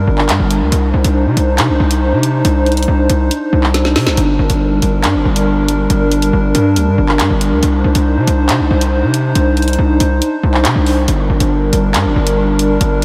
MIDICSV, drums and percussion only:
0, 0, Header, 1, 2, 480
1, 0, Start_track
1, 0, Key_signature, -2, "minor"
1, 0, Tempo, 431655
1, 802, Time_signature, 4, 2, 24, 8
1, 14510, End_track
2, 0, Start_track
2, 0, Title_t, "Drums"
2, 202, Note_on_c, 9, 39, 69
2, 313, Note_off_c, 9, 39, 0
2, 322, Note_on_c, 9, 39, 118
2, 323, Note_on_c, 9, 42, 86
2, 433, Note_off_c, 9, 39, 0
2, 434, Note_off_c, 9, 42, 0
2, 562, Note_on_c, 9, 42, 87
2, 673, Note_off_c, 9, 42, 0
2, 802, Note_on_c, 9, 42, 83
2, 913, Note_off_c, 9, 42, 0
2, 1162, Note_on_c, 9, 42, 76
2, 1273, Note_off_c, 9, 42, 0
2, 1523, Note_on_c, 9, 42, 76
2, 1634, Note_off_c, 9, 42, 0
2, 1761, Note_on_c, 9, 42, 81
2, 1762, Note_on_c, 9, 39, 111
2, 1873, Note_off_c, 9, 39, 0
2, 1873, Note_off_c, 9, 42, 0
2, 2121, Note_on_c, 9, 42, 80
2, 2232, Note_off_c, 9, 42, 0
2, 2482, Note_on_c, 9, 42, 87
2, 2594, Note_off_c, 9, 42, 0
2, 2722, Note_on_c, 9, 42, 81
2, 2833, Note_off_c, 9, 42, 0
2, 2963, Note_on_c, 9, 42, 40
2, 3023, Note_off_c, 9, 42, 0
2, 3023, Note_on_c, 9, 42, 48
2, 3082, Note_off_c, 9, 42, 0
2, 3082, Note_on_c, 9, 42, 59
2, 3142, Note_off_c, 9, 42, 0
2, 3142, Note_on_c, 9, 42, 66
2, 3253, Note_off_c, 9, 42, 0
2, 3443, Note_on_c, 9, 42, 84
2, 3554, Note_off_c, 9, 42, 0
2, 3681, Note_on_c, 9, 42, 84
2, 3793, Note_off_c, 9, 42, 0
2, 4042, Note_on_c, 9, 39, 68
2, 4153, Note_off_c, 9, 39, 0
2, 4162, Note_on_c, 9, 38, 61
2, 4163, Note_on_c, 9, 42, 81
2, 4273, Note_off_c, 9, 38, 0
2, 4274, Note_off_c, 9, 42, 0
2, 4282, Note_on_c, 9, 38, 60
2, 4393, Note_off_c, 9, 38, 0
2, 4401, Note_on_c, 9, 38, 93
2, 4401, Note_on_c, 9, 46, 63
2, 4512, Note_off_c, 9, 38, 0
2, 4513, Note_off_c, 9, 46, 0
2, 4521, Note_on_c, 9, 38, 89
2, 4632, Note_off_c, 9, 38, 0
2, 4641, Note_on_c, 9, 42, 81
2, 4752, Note_off_c, 9, 42, 0
2, 5001, Note_on_c, 9, 42, 78
2, 5112, Note_off_c, 9, 42, 0
2, 5362, Note_on_c, 9, 42, 75
2, 5473, Note_off_c, 9, 42, 0
2, 5602, Note_on_c, 9, 39, 112
2, 5602, Note_on_c, 9, 42, 82
2, 5713, Note_off_c, 9, 39, 0
2, 5713, Note_off_c, 9, 42, 0
2, 5960, Note_on_c, 9, 42, 79
2, 6072, Note_off_c, 9, 42, 0
2, 6321, Note_on_c, 9, 42, 89
2, 6433, Note_off_c, 9, 42, 0
2, 6561, Note_on_c, 9, 42, 81
2, 6672, Note_off_c, 9, 42, 0
2, 6800, Note_on_c, 9, 42, 62
2, 6911, Note_off_c, 9, 42, 0
2, 6920, Note_on_c, 9, 42, 73
2, 7031, Note_off_c, 9, 42, 0
2, 7281, Note_on_c, 9, 42, 83
2, 7392, Note_off_c, 9, 42, 0
2, 7521, Note_on_c, 9, 42, 81
2, 7632, Note_off_c, 9, 42, 0
2, 7881, Note_on_c, 9, 39, 67
2, 7992, Note_off_c, 9, 39, 0
2, 8001, Note_on_c, 9, 39, 119
2, 8002, Note_on_c, 9, 42, 86
2, 8113, Note_off_c, 9, 39, 0
2, 8113, Note_off_c, 9, 42, 0
2, 8241, Note_on_c, 9, 42, 86
2, 8352, Note_off_c, 9, 42, 0
2, 8481, Note_on_c, 9, 42, 79
2, 8592, Note_off_c, 9, 42, 0
2, 8841, Note_on_c, 9, 42, 77
2, 8952, Note_off_c, 9, 42, 0
2, 9202, Note_on_c, 9, 42, 76
2, 9313, Note_off_c, 9, 42, 0
2, 9441, Note_on_c, 9, 39, 116
2, 9441, Note_on_c, 9, 42, 82
2, 9552, Note_off_c, 9, 42, 0
2, 9553, Note_off_c, 9, 39, 0
2, 9801, Note_on_c, 9, 42, 82
2, 9912, Note_off_c, 9, 42, 0
2, 10162, Note_on_c, 9, 42, 86
2, 10273, Note_off_c, 9, 42, 0
2, 10402, Note_on_c, 9, 42, 80
2, 10513, Note_off_c, 9, 42, 0
2, 10641, Note_on_c, 9, 42, 39
2, 10702, Note_off_c, 9, 42, 0
2, 10702, Note_on_c, 9, 42, 49
2, 10761, Note_off_c, 9, 42, 0
2, 10761, Note_on_c, 9, 42, 57
2, 10822, Note_off_c, 9, 42, 0
2, 10822, Note_on_c, 9, 42, 68
2, 10933, Note_off_c, 9, 42, 0
2, 11122, Note_on_c, 9, 42, 81
2, 11234, Note_off_c, 9, 42, 0
2, 11362, Note_on_c, 9, 42, 87
2, 11473, Note_off_c, 9, 42, 0
2, 11722, Note_on_c, 9, 39, 68
2, 11833, Note_off_c, 9, 39, 0
2, 11842, Note_on_c, 9, 39, 121
2, 11843, Note_on_c, 9, 42, 84
2, 11954, Note_off_c, 9, 39, 0
2, 11954, Note_off_c, 9, 42, 0
2, 12082, Note_on_c, 9, 46, 60
2, 12193, Note_off_c, 9, 46, 0
2, 12321, Note_on_c, 9, 42, 78
2, 12432, Note_off_c, 9, 42, 0
2, 12681, Note_on_c, 9, 42, 75
2, 12792, Note_off_c, 9, 42, 0
2, 13042, Note_on_c, 9, 42, 76
2, 13153, Note_off_c, 9, 42, 0
2, 13282, Note_on_c, 9, 39, 113
2, 13282, Note_on_c, 9, 42, 84
2, 13393, Note_off_c, 9, 39, 0
2, 13393, Note_off_c, 9, 42, 0
2, 13641, Note_on_c, 9, 42, 84
2, 13752, Note_off_c, 9, 42, 0
2, 14003, Note_on_c, 9, 42, 86
2, 14114, Note_off_c, 9, 42, 0
2, 14242, Note_on_c, 9, 42, 81
2, 14354, Note_off_c, 9, 42, 0
2, 14510, End_track
0, 0, End_of_file